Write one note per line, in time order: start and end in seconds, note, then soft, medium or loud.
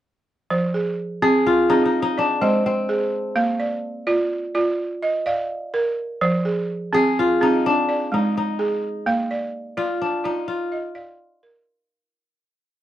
0.50 0.98 F3 medium
0.50 1.22 C5 medium
0.74 1.46 G#4 medium
1.22 1.69 C4 medium
1.22 2.59 G#4 medium
1.47 2.98 F4 medium
1.70 1.93 C4 medium
1.70 1.85 D#4 medium
1.70 2.17 G#4 medium
1.86 2.02 D#4 medium
2.02 2.25 D#4 medium
2.17 3.86 D4 medium
2.17 2.89 D5 medium
2.41 2.89 G#3 medium
2.41 2.66 C4 medium
2.41 3.13 D#5 medium
2.66 4.46 C4 medium
2.89 3.36 G#4 medium
3.36 3.83 A#3 medium
3.36 4.07 F5 medium
3.60 4.06 D5 medium
4.07 4.54 F4 medium
4.07 4.53 D5 medium
4.55 5.03 F4 medium
4.55 5.25 D5 medium
5.03 5.74 D#5 medium
5.26 5.74 D5 medium
5.26 5.98 F5 medium
5.74 6.21 A#4 medium
6.21 6.69 F3 medium
6.21 6.93 C5 medium
6.45 6.92 G#4 medium
6.93 7.40 C4 medium
6.93 7.40 G#4 medium
6.93 8.31 G#4 medium
7.19 8.71 F4 medium
7.41 7.65 C4 medium
7.41 7.72 D#4 medium
7.41 7.88 G#4 medium
7.66 8.20 D4 medium
7.89 8.60 D5 medium
8.12 8.59 G#3 medium
8.12 8.37 D#4 medium
8.37 10.00 D#4 medium
8.59 9.07 G#4 medium
9.06 9.54 A#3 medium
9.06 9.78 F5 medium
9.31 9.76 D5 medium
9.77 10.23 F4 medium
9.77 10.47 F4 medium
9.77 10.23 D5 medium
10.02 10.31 D4 medium
10.24 11.87 D#4 medium
10.24 10.72 F4 medium
10.24 10.94 D5 medium
10.48 11.99 F4 medium
10.72 11.43 D#5 medium
10.95 11.43 D5 medium
10.95 11.66 F5 medium
11.43 11.90 A#4 medium